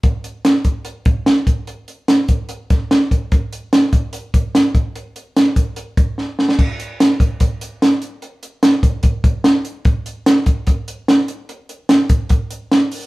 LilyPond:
\new DrumStaff \with { instrumentName = "Drums" } \drummode { \time 4/4 \tempo 4 = 147 <hh bd>8 hh8 <hh sn>8 <hh bd>8 hh8 <hh bd>8 <hh sn>8 <hh bd>8 | hh8 hh8 <hh sn>8 <hh bd>8 hh8 <hh bd sn>8 <hh sn>8 <hh bd>8 | <hh bd>8 hh8 <hh sn>8 <hh bd>8 hh8 <hh bd>8 <hh sn>8 <hh bd>8 | hh8 hh8 <hh sn>8 <hh bd>8 hh8 <hh bd>8 sn8 sn16 sn16 |
<cymc bd>8 hh8 <hh sn>8 <hh bd>8 <hh bd>8 hh8 <hh sn>8 hh8 | hh8 hh8 <hh sn>8 <hh bd>8 <hh bd>8 <hh bd>8 <hh sn>8 hh8 | <hh bd>8 hh8 <hh sn>8 <hh bd>8 <hh bd>8 hh8 <hh sn>8 hh8 | hh8 hh8 <hh sn>8 <hh bd>8 <hh bd>8 hh8 <hh sn>8 hho8 | }